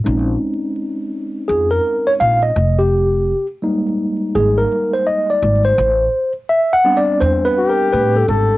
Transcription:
0, 0, Header, 1, 4, 480
1, 0, Start_track
1, 0, Tempo, 714286
1, 40, Time_signature, 4, 2, 24, 8
1, 5762, End_track
2, 0, Start_track
2, 0, Title_t, "Tine electric piano"
2, 0, Program_c, 0, 4
2, 28, Note_on_c, 0, 56, 52
2, 33, Note_on_c, 0, 60, 44
2, 34, Note_on_c, 0, 61, 47
2, 37, Note_on_c, 0, 63, 55
2, 995, Note_on_c, 0, 68, 86
2, 1137, Note_off_c, 0, 68, 0
2, 1148, Note_on_c, 0, 70, 94
2, 1390, Note_on_c, 0, 73, 93
2, 1396, Note_off_c, 0, 70, 0
2, 1430, Note_off_c, 0, 73, 0
2, 1479, Note_on_c, 0, 77, 106
2, 1619, Note_off_c, 0, 77, 0
2, 1630, Note_on_c, 0, 75, 85
2, 1687, Note_off_c, 0, 56, 0
2, 1689, Note_off_c, 0, 60, 0
2, 1690, Note_off_c, 0, 61, 0
2, 1692, Note_off_c, 0, 63, 0
2, 1872, Note_on_c, 0, 67, 85
2, 1878, Note_off_c, 0, 75, 0
2, 2325, Note_off_c, 0, 67, 0
2, 2434, Note_on_c, 0, 55, 57
2, 2440, Note_on_c, 0, 56, 49
2, 2443, Note_on_c, 0, 58, 50
2, 2443, Note_on_c, 0, 63, 63
2, 2925, Note_on_c, 0, 68, 87
2, 3076, Note_on_c, 0, 70, 90
2, 3077, Note_off_c, 0, 68, 0
2, 3316, Note_on_c, 0, 72, 84
2, 3320, Note_off_c, 0, 70, 0
2, 3404, Note_on_c, 0, 75, 92
2, 3405, Note_off_c, 0, 72, 0
2, 3557, Note_off_c, 0, 75, 0
2, 3561, Note_on_c, 0, 74, 79
2, 3779, Note_off_c, 0, 74, 0
2, 3794, Note_on_c, 0, 72, 99
2, 3850, Note_off_c, 0, 55, 0
2, 3853, Note_off_c, 0, 56, 0
2, 3855, Note_off_c, 0, 58, 0
2, 3855, Note_off_c, 0, 63, 0
2, 4245, Note_off_c, 0, 72, 0
2, 4363, Note_on_c, 0, 76, 96
2, 4523, Note_on_c, 0, 78, 112
2, 4526, Note_off_c, 0, 76, 0
2, 4599, Note_on_c, 0, 55, 55
2, 4601, Note_on_c, 0, 59, 52
2, 4604, Note_on_c, 0, 60, 53
2, 4605, Note_on_c, 0, 62, 67
2, 4683, Note_on_c, 0, 74, 91
2, 4686, Note_off_c, 0, 78, 0
2, 4830, Note_off_c, 0, 74, 0
2, 4841, Note_on_c, 0, 72, 95
2, 5005, Note_off_c, 0, 72, 0
2, 5005, Note_on_c, 0, 71, 100
2, 5167, Note_off_c, 0, 71, 0
2, 5171, Note_on_c, 0, 70, 87
2, 5325, Note_on_c, 0, 71, 100
2, 5330, Note_off_c, 0, 70, 0
2, 5471, Note_off_c, 0, 71, 0
2, 5487, Note_on_c, 0, 69, 74
2, 5762, Note_off_c, 0, 55, 0
2, 5762, Note_off_c, 0, 59, 0
2, 5762, Note_off_c, 0, 60, 0
2, 5762, Note_off_c, 0, 62, 0
2, 5762, Note_off_c, 0, 69, 0
2, 5762, End_track
3, 0, Start_track
3, 0, Title_t, "Flugelhorn"
3, 0, Program_c, 1, 56
3, 5094, Note_on_c, 1, 67, 103
3, 5540, Note_off_c, 1, 67, 0
3, 5571, Note_on_c, 1, 69, 95
3, 5762, Note_off_c, 1, 69, 0
3, 5762, End_track
4, 0, Start_track
4, 0, Title_t, "Upright bass"
4, 0, Program_c, 2, 32
4, 40, Note_on_c, 2, 34, 89
4, 231, Note_off_c, 2, 34, 0
4, 1002, Note_on_c, 2, 41, 90
4, 1192, Note_off_c, 2, 41, 0
4, 1482, Note_on_c, 2, 34, 88
4, 1672, Note_off_c, 2, 34, 0
4, 1721, Note_on_c, 2, 29, 99
4, 2222, Note_off_c, 2, 29, 0
4, 2923, Note_on_c, 2, 32, 90
4, 3113, Note_off_c, 2, 32, 0
4, 3645, Note_on_c, 2, 32, 93
4, 3834, Note_off_c, 2, 32, 0
4, 3884, Note_on_c, 2, 33, 108
4, 4073, Note_off_c, 2, 33, 0
4, 4846, Note_on_c, 2, 40, 94
4, 5034, Note_off_c, 2, 40, 0
4, 5330, Note_on_c, 2, 45, 88
4, 5517, Note_off_c, 2, 45, 0
4, 5566, Note_on_c, 2, 32, 89
4, 5755, Note_off_c, 2, 32, 0
4, 5762, End_track
0, 0, End_of_file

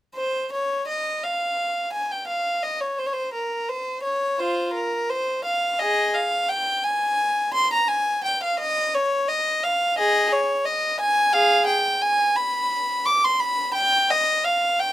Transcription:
0, 0, Header, 1, 2, 480
1, 0, Start_track
1, 0, Tempo, 705053
1, 103, Time_signature, 4, 2, 24, 8
1, 5380, Tempo, 689655
1, 10268, End_track
2, 0, Start_track
2, 0, Title_t, "Violin"
2, 0, Program_c, 0, 40
2, 101, Note_on_c, 0, 72, 72
2, 332, Note_off_c, 0, 72, 0
2, 355, Note_on_c, 0, 73, 70
2, 593, Note_off_c, 0, 73, 0
2, 596, Note_on_c, 0, 75, 74
2, 831, Note_off_c, 0, 75, 0
2, 839, Note_on_c, 0, 77, 72
2, 1312, Note_on_c, 0, 80, 68
2, 1314, Note_off_c, 0, 77, 0
2, 1430, Note_off_c, 0, 80, 0
2, 1438, Note_on_c, 0, 79, 64
2, 1547, Note_on_c, 0, 77, 69
2, 1555, Note_off_c, 0, 79, 0
2, 1785, Note_off_c, 0, 77, 0
2, 1789, Note_on_c, 0, 75, 71
2, 1905, Note_on_c, 0, 73, 64
2, 1910, Note_off_c, 0, 75, 0
2, 2028, Note_off_c, 0, 73, 0
2, 2031, Note_on_c, 0, 72, 74
2, 2078, Note_off_c, 0, 72, 0
2, 2083, Note_on_c, 0, 73, 65
2, 2127, Note_on_c, 0, 72, 71
2, 2128, Note_off_c, 0, 73, 0
2, 2270, Note_on_c, 0, 70, 64
2, 2273, Note_off_c, 0, 72, 0
2, 2505, Note_off_c, 0, 70, 0
2, 2511, Note_on_c, 0, 72, 68
2, 2741, Note_on_c, 0, 73, 71
2, 2747, Note_off_c, 0, 72, 0
2, 2975, Note_off_c, 0, 73, 0
2, 2982, Note_on_c, 0, 65, 62
2, 2987, Note_on_c, 0, 72, 74
2, 3203, Note_off_c, 0, 65, 0
2, 3222, Note_off_c, 0, 72, 0
2, 3222, Note_on_c, 0, 70, 73
2, 3458, Note_off_c, 0, 70, 0
2, 3468, Note_on_c, 0, 72, 77
2, 3706, Note_on_c, 0, 77, 77
2, 3707, Note_off_c, 0, 72, 0
2, 3939, Note_off_c, 0, 77, 0
2, 3941, Note_on_c, 0, 75, 81
2, 3946, Note_on_c, 0, 68, 68
2, 4165, Note_off_c, 0, 68, 0
2, 4179, Note_off_c, 0, 75, 0
2, 4179, Note_on_c, 0, 77, 77
2, 4414, Note_on_c, 0, 79, 82
2, 4420, Note_off_c, 0, 77, 0
2, 4651, Note_on_c, 0, 80, 80
2, 4660, Note_off_c, 0, 79, 0
2, 5132, Note_on_c, 0, 84, 92
2, 5138, Note_off_c, 0, 80, 0
2, 5254, Note_off_c, 0, 84, 0
2, 5264, Note_on_c, 0, 82, 76
2, 5364, Note_on_c, 0, 80, 84
2, 5379, Note_off_c, 0, 82, 0
2, 5612, Note_off_c, 0, 80, 0
2, 5615, Note_on_c, 0, 79, 81
2, 5736, Note_off_c, 0, 79, 0
2, 5749, Note_on_c, 0, 77, 77
2, 5861, Note_on_c, 0, 75, 95
2, 5863, Note_off_c, 0, 77, 0
2, 6096, Note_off_c, 0, 75, 0
2, 6107, Note_on_c, 0, 73, 89
2, 6339, Note_on_c, 0, 75, 85
2, 6344, Note_off_c, 0, 73, 0
2, 6582, Note_off_c, 0, 75, 0
2, 6583, Note_on_c, 0, 77, 82
2, 6822, Note_on_c, 0, 68, 74
2, 6826, Note_off_c, 0, 77, 0
2, 6827, Note_on_c, 0, 75, 92
2, 7048, Note_off_c, 0, 68, 0
2, 7063, Note_off_c, 0, 75, 0
2, 7066, Note_on_c, 0, 73, 86
2, 7292, Note_on_c, 0, 75, 89
2, 7305, Note_off_c, 0, 73, 0
2, 7535, Note_off_c, 0, 75, 0
2, 7537, Note_on_c, 0, 80, 95
2, 7762, Note_on_c, 0, 68, 83
2, 7762, Note_on_c, 0, 77, 98
2, 7772, Note_off_c, 0, 80, 0
2, 7990, Note_off_c, 0, 68, 0
2, 7998, Note_on_c, 0, 79, 87
2, 8007, Note_off_c, 0, 77, 0
2, 8238, Note_off_c, 0, 79, 0
2, 8242, Note_on_c, 0, 80, 90
2, 8482, Note_on_c, 0, 83, 94
2, 8484, Note_off_c, 0, 80, 0
2, 8963, Note_off_c, 0, 83, 0
2, 8967, Note_on_c, 0, 86, 99
2, 9087, Note_off_c, 0, 86, 0
2, 9092, Note_on_c, 0, 84, 91
2, 9202, Note_on_c, 0, 83, 95
2, 9211, Note_off_c, 0, 84, 0
2, 9442, Note_on_c, 0, 79, 99
2, 9449, Note_off_c, 0, 83, 0
2, 9685, Note_off_c, 0, 79, 0
2, 9695, Note_on_c, 0, 75, 95
2, 9932, Note_on_c, 0, 77, 84
2, 9937, Note_off_c, 0, 75, 0
2, 10176, Note_on_c, 0, 79, 87
2, 10178, Note_off_c, 0, 77, 0
2, 10268, Note_off_c, 0, 79, 0
2, 10268, End_track
0, 0, End_of_file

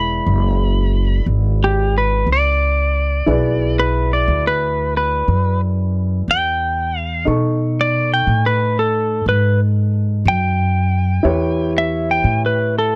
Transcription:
0, 0, Header, 1, 4, 480
1, 0, Start_track
1, 0, Tempo, 665188
1, 2365, Time_signature, 12, 3, 24, 8
1, 9349, End_track
2, 0, Start_track
2, 0, Title_t, "Electric slide guitar"
2, 0, Program_c, 0, 29
2, 0, Note_on_c, 0, 83, 96
2, 904, Note_off_c, 0, 83, 0
2, 1184, Note_on_c, 0, 67, 90
2, 1407, Note_off_c, 0, 67, 0
2, 1427, Note_on_c, 0, 71, 90
2, 1649, Note_off_c, 0, 71, 0
2, 1678, Note_on_c, 0, 74, 91
2, 2713, Note_off_c, 0, 74, 0
2, 2738, Note_on_c, 0, 71, 86
2, 2965, Note_off_c, 0, 71, 0
2, 2982, Note_on_c, 0, 74, 79
2, 3207, Note_off_c, 0, 74, 0
2, 3228, Note_on_c, 0, 71, 90
2, 3567, Note_off_c, 0, 71, 0
2, 3588, Note_on_c, 0, 71, 78
2, 4042, Note_off_c, 0, 71, 0
2, 4551, Note_on_c, 0, 79, 92
2, 5035, Note_off_c, 0, 79, 0
2, 5035, Note_on_c, 0, 77, 92
2, 5236, Note_off_c, 0, 77, 0
2, 5634, Note_on_c, 0, 74, 87
2, 5851, Note_off_c, 0, 74, 0
2, 5871, Note_on_c, 0, 79, 80
2, 6090, Note_off_c, 0, 79, 0
2, 6107, Note_on_c, 0, 71, 87
2, 6328, Note_off_c, 0, 71, 0
2, 6343, Note_on_c, 0, 69, 82
2, 6682, Note_off_c, 0, 69, 0
2, 6701, Note_on_c, 0, 71, 91
2, 6924, Note_off_c, 0, 71, 0
2, 7420, Note_on_c, 0, 79, 100
2, 8460, Note_off_c, 0, 79, 0
2, 8501, Note_on_c, 0, 76, 84
2, 8722, Note_off_c, 0, 76, 0
2, 8739, Note_on_c, 0, 79, 85
2, 8961, Note_off_c, 0, 79, 0
2, 8991, Note_on_c, 0, 71, 86
2, 9207, Note_off_c, 0, 71, 0
2, 9226, Note_on_c, 0, 69, 84
2, 9349, Note_off_c, 0, 69, 0
2, 9349, End_track
3, 0, Start_track
3, 0, Title_t, "Grand piano"
3, 0, Program_c, 1, 0
3, 0, Note_on_c, 1, 56, 46
3, 0, Note_on_c, 1, 64, 50
3, 0, Note_on_c, 1, 71, 48
3, 0, Note_on_c, 1, 74, 54
3, 2329, Note_off_c, 1, 64, 0
3, 2332, Note_off_c, 1, 56, 0
3, 2334, Note_off_c, 1, 71, 0
3, 2338, Note_off_c, 1, 74, 0
3, 2355, Note_on_c, 1, 64, 56
3, 2362, Note_on_c, 1, 68, 51
3, 2364, Note_on_c, 1, 71, 53
3, 2369, Note_on_c, 1, 74, 65
3, 5210, Note_off_c, 1, 64, 0
3, 5214, Note_off_c, 1, 68, 0
3, 5215, Note_off_c, 1, 71, 0
3, 5217, Note_off_c, 1, 74, 0
3, 5233, Note_on_c, 1, 63, 54
3, 5242, Note_on_c, 1, 69, 49
3, 5251, Note_on_c, 1, 85, 64
3, 8085, Note_off_c, 1, 63, 0
3, 8089, Note_off_c, 1, 69, 0
3, 8094, Note_off_c, 1, 85, 0
3, 8103, Note_on_c, 1, 64, 61
3, 8112, Note_on_c, 1, 67, 53
3, 8112, Note_on_c, 1, 71, 54
3, 8116, Note_on_c, 1, 73, 68
3, 9349, Note_off_c, 1, 64, 0
3, 9349, Note_off_c, 1, 67, 0
3, 9349, Note_off_c, 1, 71, 0
3, 9349, Note_off_c, 1, 73, 0
3, 9349, End_track
4, 0, Start_track
4, 0, Title_t, "Upright bass"
4, 0, Program_c, 2, 32
4, 0, Note_on_c, 2, 28, 79
4, 176, Note_off_c, 2, 28, 0
4, 191, Note_on_c, 2, 30, 86
4, 896, Note_off_c, 2, 30, 0
4, 912, Note_on_c, 2, 32, 83
4, 1617, Note_off_c, 2, 32, 0
4, 1635, Note_on_c, 2, 37, 81
4, 2339, Note_off_c, 2, 37, 0
4, 2361, Note_on_c, 2, 35, 75
4, 3062, Note_off_c, 2, 35, 0
4, 3087, Note_on_c, 2, 38, 83
4, 3785, Note_off_c, 2, 38, 0
4, 3810, Note_on_c, 2, 42, 81
4, 4506, Note_off_c, 2, 42, 0
4, 4530, Note_on_c, 2, 40, 79
4, 5225, Note_off_c, 2, 40, 0
4, 5248, Note_on_c, 2, 47, 78
4, 5943, Note_off_c, 2, 47, 0
4, 5967, Note_on_c, 2, 45, 81
4, 6662, Note_off_c, 2, 45, 0
4, 6682, Note_on_c, 2, 44, 82
4, 7379, Note_off_c, 2, 44, 0
4, 7400, Note_on_c, 2, 42, 87
4, 8097, Note_off_c, 2, 42, 0
4, 8116, Note_on_c, 2, 40, 81
4, 8815, Note_off_c, 2, 40, 0
4, 8834, Note_on_c, 2, 45, 85
4, 9349, Note_off_c, 2, 45, 0
4, 9349, End_track
0, 0, End_of_file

